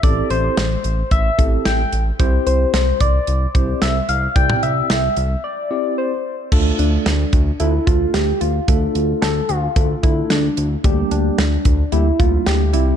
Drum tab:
CC |----------------|----------------|----------------|x---------------|
HH |x-x-x-x-x-x-x-x-|x-x-x-x-x-x-x-x-|x-x-x-x---------|--x-x-x-x-x-x-x-|
SD |----o-------o---|----o-------o---|----o-----------|----o-------o---|
T2 |----------------|----------------|-o--------------|----------------|
BD |o-------o-o-----|o-----o---o-----|o---------------|o-----o---o-----|

CC |----------------|----------------|
HH |x-x-x-x-x-x-x-x-|x-x-x-x-x-x-x-x-|
SD |----o-------o---|----o-------o---|
T2 |----------------|----------------|
BD |o-------o-o-----|o-----o---o-----|